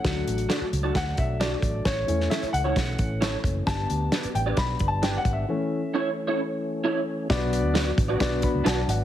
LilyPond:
<<
  \new Staff \with { instrumentName = "Upright piano" } { \time 4/4 \key a \mixolydian \tempo 4 = 132 << { fis''4 r4 fis''8 e''8 d''4 | cis''4 e''8 fis''4. r4 | a''4. g''8 \tuplet 3/2 { b''4 a''8 g''8 fis''8 e''8~ } | e''2 r2 |
r2 r8 b''8 <fis'' a''>8 <d'' fis''>8 | } \\ { <fis a d'>1 | r8 <e a cis'>8 r2. | <g b d'>4. r2 r8 | <e a cis'>8 r2. r8 |
<b d' fis' b' d''>4 r4 <b d' fis' b' d''>4 r4 | } >> }
  \new Staff \with { instrumentName = "Clean electric guitar" } { \time 4/4 \key a \mixolydian r4 <d' fis' a' d''>16 r8 <d' fis' a' d''>16 r4 <d' fis' a' d''>16 r8. | r4 <cis' e' a' cis''>16 r8 <cis' e' a' cis''>16 r4 <cis' e' a' cis''>16 r8. | r4 <d' g' b' d''>16 r8 <d' g' b' d''>16 r4 <d' g' b' d''>16 r8. | r4 <cis' e' a' cis''>16 r8 <cis' e' a' cis''>16 r4 <cis' e' a' cis''>16 r8. |
r4 <d' fis' b' d''>16 r8 <d' fis' b' d''>16 r4 <d' fis' b' d''>16 r8. | }
  \new Staff \with { instrumentName = "Tonewheel organ" } { \time 4/4 \key a \mixolydian << { <fis d'>1 | <e cis'>1 | <g d'>1 | <e cis'>1 |
<fis d'>1 | } \\ { a1~ | a1 | b1 | a1 |
b1 | } >> }
  \new Staff \with { instrumentName = "Fingered electric bass" } { \clef bass \time 4/4 \key a \mixolydian d,8 a,,8 r8 cis,8 d,8 b,,4 a,,8 | a,,8 e,8 r8 cis,8 b,,8 a,,4 fis,,8 | g,,8 d,8 r8 a,,8 b,,8 g,,4 gis,,8 | r1 |
b,,8. d,8. a,,8 b,,8. cis,16 b,,8 gis,,8 | }
  \new DrumStaff \with { instrumentName = "Drums" } \drummode { \time 4/4 <hh bd sn>8 hh16 hh16 <hh sn>8 hh8 <hh bd sn>8 <hh bd>8 <hh sn>8 <hh bd>8 | <hh bd sn>8 hh16 sn16 <hh sn>16 hh16 hh8 <hh bd sn>8 <hh bd>8 <hh sn>8 <hh bd>8 | <hh bd sn>8 hh8 <hh sn>16 hh16 hh8 <hh bd sn>8 <hh bd>8 <hh sn>8 <hh bd>8 | r4 r4 r4 r4 |
<hh bd sn>8 hh8 <hh sn>8 <hh bd>8 <hh bd sn>8 <hh bd>8 <hh sn>8 hh8 | }
>>